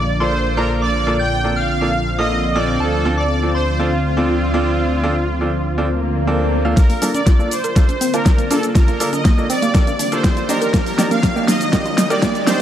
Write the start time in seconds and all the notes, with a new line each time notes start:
Already playing: A#1 D3 F3 A#3 F4 D5 D6
0.20 A#3 D4 F4 A4 C5 D5 C6
0.57 A#3 D4 F4 A4 A#4 D5 A#5
0.82 C4 D5 D6
1.07 A#3 D4 F4 A4 D5
1.19 G5 G6
1.44 A#3 D4 F4 A4 D5
1.56 F5 F6
1.81 A#3 D4 F4 A4 D5
2.18 D3 A#3 F4 A4 D#5 F5 D#6
2.55 C4 D4 F4 A4 D5 D6
2.80 D2 A4 A5
3.05 C4 D4 F4 A4 D5
3.18 D5 D6
3.43 C4 D4 F4 A4 D5
3.55 C5 C6
3.79 C4 D4 F4 A4 D5 F5
4.17 C4 D4 F4 A4 D5
4.54 C4 D4 F4 A4 D5
5.03 C4 D4 F4 A4 D5
5.41 C4 D4 F4 A4 D5
5.78 C4 D4 F4 A4 D5, swell
6.27 C4 D4 F4 A4 D5
6.65 A#3 D4 F4 A4 F5
6.77 A#1 D3 A#3 F4 A#4 A5, kick, snare, closed hi-hat, riser, cabasa
6.90 A#3, open hi-hat, cabasa
7.02 A#3 D4 F4 A4 D5, open hi-hat, low conga, cabasa
7.14 A#1 D5, closed hi-hat, high conga, cabasa
7.27 F4, kick, snare, closed hi-hat, cabasa
7.39 A#3 D4 F4 A4 D5, cabasa
7.51 A#1 C5, open hi-hat, cabasa
7.64 A#4, closed hi-hat, cabasa
7.76 A#3 D4 F4 A4 D5, kick, snare, closed hi-hat, cabasa
7.89 A#1, closed hi-hat, high conga, cabasa
8.01 C4, open hi-hat, cabasa
8.14 A#3 D4 F4 A#4 D5 A5, closed hi-hat, cabasa
8.26 kick, snare, closed hi-hat, cabasa
8.38 A#1 A#3, closed hi-hat, cabasa
8.51 A#3 D4 F4 A4 D5, open hi-hat, high conga, cabasa
8.63 closed hi-hat, cabasa
8.75 A#1 F4 G4 A#4, kick, snare, closed hi-hat, cabasa
8.88 F4, closed hi-hat, cabasa
9.00 A#3 D4 F4 A4 D5, open hi-hat, cabasa
9.13 A#1 A#4 D#5, closed hi-hat, high conga, cabasa
9.25 A#3, kick, snare, closed hi-hat, cabasa
9.38 A#3 D4 F4 A4 D5, cabasa
9.50 A#1 C4 D5, open hi-hat, cabasa
9.62 A#3, closed hi-hat, cabasa
9.75 A#3 D4 F4 A4 D5, kick, snare, closed hi-hat, cabasa
9.87 A#1 A#3, closed hi-hat, high conga, cabasa
9.99 D4, open hi-hat, cabasa
10.12 A#3 D4 F4 A4 C5 D5, closed hi-hat, cabasa
10.24 F4, kick, snare, closed hi-hat, cabasa
10.37 A#1 F4, closed hi-hat, cabasa
10.49 A#3 D4 D#4 G4 A#4 D5, open hi-hat, high conga, cabasa
10.62 A#4, closed hi-hat, cabasa
10.74 D#2 D#3 A#3 A#4, kick, snare, closed hi-hat, cabasa
10.86 open hi-hat, cabasa
10.98 A#3 C4 D4 D#4 G4 D5, snare, open hi-hat, low conga, cabasa
11.11 D#2 A#3 F5, closed hi-hat, high conga, cabasa
11.23 kick, snare, closed hi-hat, cabasa
11.36 A#3 D4 D#4 G4 D5, cabasa
11.48 D#2 D#4 D#5, snare, open hi-hat, cabasa
11.61 closed hi-hat, cabasa
11.73 A#3 D4 D#4 F4 G4 D5, kick, snare, closed hi-hat, cabasa
11.85 D#2 F4, closed hi-hat, high conga, cabasa
11.98 snare, open hi-hat, cabasa
12.10 A#3 D4 D#4 G4 A#4 D5, closed hi-hat, cabasa
12.22 A#3, kick, snare, closed hi-hat, cabasa
12.35 D#2, closed hi-hat, cabasa
12.47 A#3 C4 D4 D#4 G4 C5 D5, snare, open hi-hat, high conga, cabasa